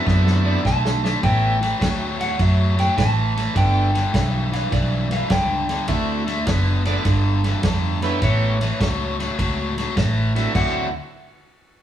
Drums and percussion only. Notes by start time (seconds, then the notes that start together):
0.07 kick, snare
0.27 snare
0.65 kick, snare
0.85 snare
1.05 snare
1.23 kick, snare, ride
1.63 snare, ride
1.81 kick, snare, ride
2.21 snare, ride
2.39 kick, snare, ride
2.79 snare, ride
2.98 kick, snare, ride
3.37 snare, ride
3.56 kick, snare, ride
3.95 snare, ride
4.14 kick, snare, ride
4.53 snare, ride
4.72 kick, snare, ride
5.11 snare, ride
5.30 kick, snare, ride
5.69 snare, ride
5.88 kick, snare, ride
6.28 snare, ride
6.47 kick, snare, ride
6.85 snare, ride
7.05 kick, snare, ride
7.44 snare, ride
7.63 kick, snare, ride
8.02 snare, ride
8.22 kick, snare, ride
8.61 snare, ride
8.81 kick, snare, ride
9.20 snare, ride
9.39 kick, ride
9.78 snare, ride
9.97 kick, snare, ride
10.36 snare, ride
10.55 kick, crash